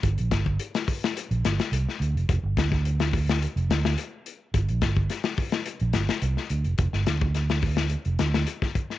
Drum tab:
HH |xxx-xxoxxxxxx-xx|x-x-xxo-xxx-x-x-|xxx-xxoxxxxxx-xx|x-x-xxo-xxx-x-x-|
SD |--o--o-o--oo-o--|--oo-o-o--oo----|--o-oo-o--oo-o--|-oo-oo-o--oo-o-o|
BD |o-oo--o---------|o-oo--o---------|o-oo--o---------|o--o--o------oo-|